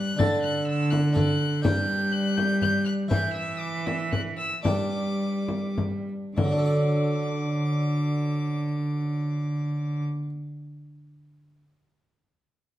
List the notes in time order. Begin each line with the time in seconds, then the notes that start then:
Already playing: G3 D4 B4 F#6
0.17 D3 D4 A4 A6, frame drum
0.42 F#6
0.68 E6
0.90 F#6, frame drum
1.13 D4 A4 F#6, frame drum
1.62 G3 D4 B4 G6, frame drum
2.12 F#6
2.37 G6, frame drum
2.61 G6, frame drum
2.85 F#6
3.08 E3 E4 B4 G6, frame drum
3.34 E6
3.60 D6
3.86 E6, frame drum
4.12 F#6, frame drum
4.37 E6
4.63 G3 D4 B4 D6, frame drum
5.48 frame drum
5.78 frame drum
6.37 D3 D6, frame drum
6.44 F#3
6.51 D4
6.58 A4
6.65 D5